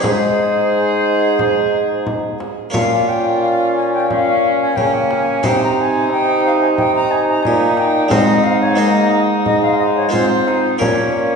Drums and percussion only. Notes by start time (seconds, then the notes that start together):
0.04 frame drum
1.39 frame drum
2.06 frame drum
2.40 frame drum
2.74 frame drum
4.11 frame drum
4.77 frame drum
5.11 frame drum
5.44 frame drum
6.78 frame drum
7.45 frame drum
7.77 frame drum
8.11 frame drum
9.46 frame drum
10.13 frame drum
10.48 frame drum
10.81 frame drum